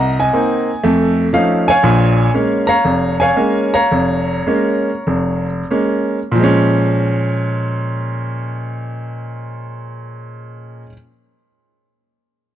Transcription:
0, 0, Header, 1, 2, 480
1, 0, Start_track
1, 0, Key_signature, -5, "minor"
1, 0, Tempo, 502513
1, 1753, Time_signature, 4, 2, 24, 8
1, 3212, Tempo, 551978
1, 4172, Tempo, 595829
1, 4652, Tempo, 657174
1, 5612, Tempo, 708383
1, 9796, End_track
2, 0, Start_track
2, 0, Title_t, "Grand piano"
2, 0, Program_c, 0, 0
2, 0, Note_on_c, 0, 36, 68
2, 0, Note_on_c, 0, 75, 63
2, 0, Note_on_c, 0, 78, 64
2, 0, Note_on_c, 0, 82, 95
2, 156, Note_off_c, 0, 82, 0
2, 177, Note_off_c, 0, 75, 0
2, 188, Note_on_c, 0, 80, 92
2, 191, Note_on_c, 0, 75, 59
2, 260, Note_off_c, 0, 36, 0
2, 318, Note_on_c, 0, 58, 57
2, 320, Note_on_c, 0, 60, 49
2, 326, Note_on_c, 0, 63, 61
2, 658, Note_off_c, 0, 58, 0
2, 659, Note_off_c, 0, 60, 0
2, 662, Note_off_c, 0, 63, 0
2, 771, Note_off_c, 0, 78, 0
2, 798, Note_on_c, 0, 57, 75
2, 804, Note_on_c, 0, 41, 79
2, 1092, Note_off_c, 0, 80, 0
2, 1093, Note_off_c, 0, 75, 0
2, 1213, Note_off_c, 0, 57, 0
2, 1216, Note_off_c, 0, 41, 0
2, 1269, Note_on_c, 0, 53, 56
2, 1276, Note_on_c, 0, 57, 49
2, 1278, Note_on_c, 0, 61, 49
2, 1278, Note_on_c, 0, 77, 88
2, 1282, Note_on_c, 0, 63, 57
2, 1575, Note_off_c, 0, 77, 0
2, 1604, Note_on_c, 0, 80, 123
2, 1608, Note_off_c, 0, 53, 0
2, 1612, Note_off_c, 0, 57, 0
2, 1613, Note_off_c, 0, 61, 0
2, 1615, Note_off_c, 0, 63, 0
2, 1622, Note_on_c, 0, 73, 80
2, 1627, Note_on_c, 0, 77, 71
2, 1750, Note_on_c, 0, 34, 75
2, 1755, Note_on_c, 0, 46, 79
2, 2166, Note_off_c, 0, 34, 0
2, 2168, Note_off_c, 0, 46, 0
2, 2195, Note_off_c, 0, 80, 0
2, 2235, Note_on_c, 0, 56, 55
2, 2238, Note_on_c, 0, 58, 50
2, 2244, Note_on_c, 0, 61, 61
2, 2529, Note_off_c, 0, 73, 0
2, 2531, Note_off_c, 0, 77, 0
2, 2551, Note_on_c, 0, 82, 102
2, 2567, Note_on_c, 0, 73, 69
2, 2568, Note_on_c, 0, 77, 79
2, 2573, Note_off_c, 0, 56, 0
2, 2575, Note_off_c, 0, 58, 0
2, 2578, Note_off_c, 0, 61, 0
2, 2717, Note_on_c, 0, 29, 69
2, 3012, Note_off_c, 0, 82, 0
2, 3055, Note_off_c, 0, 77, 0
2, 3055, Note_on_c, 0, 80, 99
2, 3057, Note_off_c, 0, 73, 0
2, 3070, Note_on_c, 0, 77, 68
2, 3071, Note_on_c, 0, 73, 70
2, 3149, Note_off_c, 0, 29, 0
2, 3212, Note_on_c, 0, 56, 58
2, 3217, Note_on_c, 0, 58, 50
2, 3218, Note_on_c, 0, 61, 60
2, 3532, Note_off_c, 0, 73, 0
2, 3537, Note_off_c, 0, 77, 0
2, 3538, Note_on_c, 0, 82, 101
2, 3542, Note_off_c, 0, 56, 0
2, 3544, Note_off_c, 0, 80, 0
2, 3545, Note_off_c, 0, 58, 0
2, 3545, Note_off_c, 0, 61, 0
2, 3545, Note_on_c, 0, 73, 70
2, 3550, Note_on_c, 0, 77, 67
2, 3691, Note_on_c, 0, 29, 72
2, 4113, Note_off_c, 0, 29, 0
2, 4172, Note_on_c, 0, 56, 60
2, 4180, Note_on_c, 0, 58, 53
2, 4180, Note_on_c, 0, 61, 63
2, 4508, Note_off_c, 0, 56, 0
2, 4512, Note_off_c, 0, 58, 0
2, 4512, Note_off_c, 0, 61, 0
2, 4657, Note_on_c, 0, 29, 73
2, 4936, Note_off_c, 0, 82, 0
2, 4939, Note_off_c, 0, 73, 0
2, 4941, Note_off_c, 0, 77, 0
2, 5057, Note_off_c, 0, 29, 0
2, 5121, Note_on_c, 0, 56, 52
2, 5122, Note_on_c, 0, 58, 50
2, 5127, Note_on_c, 0, 61, 60
2, 5465, Note_off_c, 0, 56, 0
2, 5466, Note_off_c, 0, 58, 0
2, 5468, Note_off_c, 0, 61, 0
2, 5568, Note_on_c, 0, 46, 72
2, 5596, Note_on_c, 0, 53, 69
2, 5625, Note_on_c, 0, 56, 65
2, 5652, Note_on_c, 0, 61, 83
2, 8616, Note_off_c, 0, 46, 0
2, 8642, Note_off_c, 0, 53, 0
2, 8670, Note_off_c, 0, 56, 0
2, 8697, Note_off_c, 0, 61, 0
2, 9796, End_track
0, 0, End_of_file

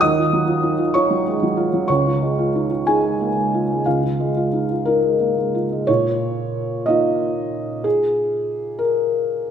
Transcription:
0, 0, Header, 1, 2, 480
1, 0, Start_track
1, 0, Tempo, 631579
1, 8, Time_signature, 6, 3, 24, 8
1, 1928, Tempo, 666667
1, 5288, Tempo, 635593
1, 7028, End_track
2, 0, Start_track
2, 0, Title_t, "Felt piano"
2, 0, Program_c, 0, 0
2, 0, Control_c, 0, 64, 127
2, 0, Note_on_c, 0, 54, 52
2, 5, Note_on_c, 0, 87, 92
2, 10, Note_on_c, 0, 75, 65
2, 14, Note_on_c, 0, 39, 67
2, 19, Control_c, 0, 64, 0
2, 86, Note_off_c, 0, 54, 0
2, 138, Note_on_c, 0, 65, 50
2, 145, Control_c, 0, 64, 127
2, 252, Note_on_c, 0, 54, 52
2, 321, Note_off_c, 0, 65, 0
2, 359, Note_on_c, 0, 65, 57
2, 438, Note_off_c, 0, 54, 0
2, 479, Note_on_c, 0, 63, 43
2, 552, Note_off_c, 0, 65, 0
2, 595, Note_on_c, 0, 65, 50
2, 600, Note_off_c, 0, 63, 0
2, 693, Note_off_c, 0, 75, 0
2, 714, Note_on_c, 0, 85, 84
2, 720, Note_off_c, 0, 87, 0
2, 721, Note_on_c, 0, 73, 68
2, 727, Note_on_c, 0, 63, 55
2, 791, Note_off_c, 0, 65, 0
2, 841, Note_on_c, 0, 54, 48
2, 916, Note_off_c, 0, 63, 0
2, 945, Note_off_c, 0, 73, 0
2, 958, Note_off_c, 0, 85, 0
2, 970, Note_on_c, 0, 56, 44
2, 1033, Note_off_c, 0, 54, 0
2, 1086, Note_off_c, 0, 56, 0
2, 1086, Note_on_c, 0, 54, 47
2, 1193, Note_on_c, 0, 65, 51
2, 1275, Note_off_c, 0, 54, 0
2, 1319, Note_on_c, 0, 54, 49
2, 1388, Note_off_c, 0, 65, 0
2, 1413, Note_off_c, 0, 39, 0
2, 1427, Note_on_c, 0, 85, 77
2, 1436, Note_on_c, 0, 73, 66
2, 1438, Note_on_c, 0, 37, 59
2, 1439, Note_off_c, 0, 54, 0
2, 1452, Control_c, 0, 64, 0
2, 1565, Note_on_c, 0, 65, 44
2, 1574, Control_c, 0, 64, 127
2, 1686, Note_on_c, 0, 56, 46
2, 1757, Note_off_c, 0, 65, 0
2, 1812, Note_on_c, 0, 65, 46
2, 1881, Note_off_c, 0, 56, 0
2, 1940, Note_on_c, 0, 63, 39
2, 2002, Note_off_c, 0, 65, 0
2, 2049, Note_on_c, 0, 65, 40
2, 2052, Note_off_c, 0, 63, 0
2, 2132, Note_off_c, 0, 73, 0
2, 2157, Note_off_c, 0, 85, 0
2, 2166, Note_on_c, 0, 80, 76
2, 2173, Note_on_c, 0, 68, 55
2, 2176, Note_on_c, 0, 63, 45
2, 2235, Note_off_c, 0, 65, 0
2, 2287, Note_on_c, 0, 56, 41
2, 2357, Note_off_c, 0, 63, 0
2, 2410, Note_on_c, 0, 58, 36
2, 2472, Note_off_c, 0, 56, 0
2, 2521, Note_off_c, 0, 58, 0
2, 2530, Note_on_c, 0, 56, 34
2, 2651, Note_on_c, 0, 65, 43
2, 2713, Note_off_c, 0, 56, 0
2, 2778, Note_on_c, 0, 56, 38
2, 2835, Note_off_c, 0, 65, 0
2, 2846, Note_off_c, 0, 37, 0
2, 2852, Note_off_c, 0, 68, 0
2, 2877, Note_off_c, 0, 80, 0
2, 2878, Note_on_c, 0, 77, 56
2, 2881, Note_on_c, 0, 65, 44
2, 2886, Note_on_c, 0, 37, 42
2, 2887, Control_c, 0, 64, 0
2, 2961, Note_off_c, 0, 56, 0
2, 2995, Note_off_c, 0, 65, 0
2, 3006, Note_on_c, 0, 65, 34
2, 3009, Control_c, 0, 64, 127
2, 3124, Note_on_c, 0, 56, 41
2, 3198, Note_off_c, 0, 65, 0
2, 3247, Note_on_c, 0, 65, 37
2, 3317, Note_off_c, 0, 56, 0
2, 3363, Note_on_c, 0, 63, 36
2, 3437, Note_off_c, 0, 65, 0
2, 3482, Note_off_c, 0, 63, 0
2, 3492, Note_on_c, 0, 65, 34
2, 3596, Note_on_c, 0, 70, 68
2, 3611, Note_on_c, 0, 63, 44
2, 3679, Note_off_c, 0, 65, 0
2, 3722, Note_on_c, 0, 56, 34
2, 3799, Note_off_c, 0, 63, 0
2, 3845, Note_on_c, 0, 58, 33
2, 3917, Note_off_c, 0, 56, 0
2, 3967, Note_off_c, 0, 58, 0
2, 3973, Note_on_c, 0, 56, 31
2, 4091, Note_off_c, 0, 77, 0
2, 4095, Note_on_c, 0, 65, 40
2, 4168, Note_off_c, 0, 56, 0
2, 4220, Note_on_c, 0, 56, 35
2, 4288, Note_off_c, 0, 65, 0
2, 4310, Note_off_c, 0, 37, 0
2, 4328, Note_on_c, 0, 73, 85
2, 4331, Note_off_c, 0, 70, 0
2, 4337, Note_off_c, 0, 56, 0
2, 4339, Note_on_c, 0, 46, 53
2, 4348, Control_c, 0, 64, 0
2, 4452, Control_c, 0, 64, 127
2, 5031, Note_off_c, 0, 46, 0
2, 5039, Note_on_c, 0, 75, 71
2, 5047, Note_off_c, 0, 73, 0
2, 5052, Note_on_c, 0, 58, 46
2, 5057, Note_on_c, 0, 63, 42
2, 5060, Note_on_c, 0, 65, 46
2, 5768, Note_off_c, 0, 75, 0
2, 5770, Note_on_c, 0, 68, 69
2, 5789, Control_c, 0, 64, 0
2, 5896, Control_c, 0, 64, 127
2, 6483, Note_on_c, 0, 70, 66
2, 6490, Note_off_c, 0, 68, 0
2, 7028, Note_off_c, 0, 58, 0
2, 7028, Note_off_c, 0, 63, 0
2, 7028, Note_off_c, 0, 65, 0
2, 7028, Note_off_c, 0, 70, 0
2, 7028, End_track
0, 0, End_of_file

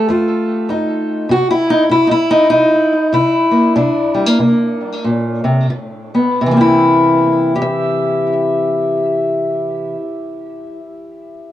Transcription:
0, 0, Header, 1, 2, 480
1, 0, Start_track
1, 0, Tempo, 604839
1, 1032, Time_signature, 4, 2, 24, 8
1, 2480, Tempo, 641026
1, 3920, Tempo, 685714
1, 4880, Tempo, 709220
1, 8332, End_track
2, 0, Start_track
2, 0, Title_t, "Steel-string acoustic guitar"
2, 0, Program_c, 0, 25
2, 0, Note_on_c, 0, 57, 47
2, 67, Note_on_c, 0, 41, 66
2, 77, Note_on_c, 0, 65, 43
2, 513, Note_off_c, 0, 41, 0
2, 547, Note_on_c, 0, 41, 68
2, 555, Note_on_c, 0, 63, 46
2, 990, Note_off_c, 0, 41, 0
2, 1009, Note_off_c, 0, 57, 0
2, 1009, Note_off_c, 0, 63, 0
2, 1009, Note_off_c, 0, 65, 0
2, 1026, Note_on_c, 0, 48, 74
2, 1043, Note_on_c, 0, 66, 103
2, 1192, Note_off_c, 0, 66, 0
2, 1195, Note_on_c, 0, 64, 94
2, 1351, Note_on_c, 0, 63, 94
2, 1446, Note_off_c, 0, 63, 0
2, 1470, Note_off_c, 0, 48, 0
2, 1504, Note_on_c, 0, 48, 73
2, 1509, Note_off_c, 0, 64, 0
2, 1519, Note_on_c, 0, 64, 99
2, 1643, Note_on_c, 0, 63, 68
2, 1663, Note_off_c, 0, 63, 0
2, 1667, Note_off_c, 0, 64, 0
2, 1676, Note_on_c, 0, 64, 99
2, 1829, Note_on_c, 0, 63, 97
2, 1951, Note_off_c, 0, 48, 0
2, 1972, Note_off_c, 0, 63, 0
2, 1981, Note_on_c, 0, 63, 99
2, 1993, Note_on_c, 0, 48, 66
2, 2320, Note_off_c, 0, 64, 0
2, 2443, Note_off_c, 0, 48, 0
2, 2475, Note_off_c, 0, 63, 0
2, 2480, Note_on_c, 0, 48, 68
2, 2488, Note_on_c, 0, 64, 86
2, 2770, Note_on_c, 0, 58, 48
2, 2912, Note_off_c, 0, 48, 0
2, 2929, Note_off_c, 0, 58, 0
2, 2953, Note_on_c, 0, 62, 72
2, 2954, Note_on_c, 0, 48, 77
2, 3243, Note_on_c, 0, 55, 47
2, 3331, Note_off_c, 0, 55, 0
2, 3331, Note_on_c, 0, 58, 43
2, 3393, Note_off_c, 0, 48, 0
2, 3425, Note_off_c, 0, 58, 0
2, 3426, Note_on_c, 0, 48, 74
2, 3432, Note_off_c, 0, 64, 0
2, 3434, Note_on_c, 0, 58, 52
2, 3880, Note_off_c, 0, 48, 0
2, 3917, Note_on_c, 0, 46, 56
2, 4192, Note_off_c, 0, 46, 0
2, 4195, Note_on_c, 0, 48, 63
2, 4372, Note_off_c, 0, 58, 0
2, 4374, Note_off_c, 0, 48, 0
2, 4377, Note_on_c, 0, 49, 68
2, 4394, Note_off_c, 0, 62, 0
2, 4688, Note_on_c, 0, 59, 59
2, 4834, Note_off_c, 0, 49, 0
2, 4857, Note_off_c, 0, 59, 0
2, 4874, Note_on_c, 0, 48, 69
2, 4909, Note_on_c, 0, 52, 65
2, 4943, Note_on_c, 0, 58, 60
2, 4979, Note_on_c, 0, 60, 57
2, 5007, Note_on_c, 0, 64, 78
2, 5631, Note_off_c, 0, 64, 0
2, 5646, Note_off_c, 0, 58, 0
2, 5648, Note_on_c, 0, 67, 70
2, 5690, Note_on_c, 0, 76, 74
2, 7243, Note_off_c, 0, 48, 0
2, 7278, Note_off_c, 0, 52, 0
2, 7348, Note_off_c, 0, 60, 0
2, 7813, Note_off_c, 0, 67, 0
2, 7834, Note_off_c, 0, 76, 0
2, 8332, End_track
0, 0, End_of_file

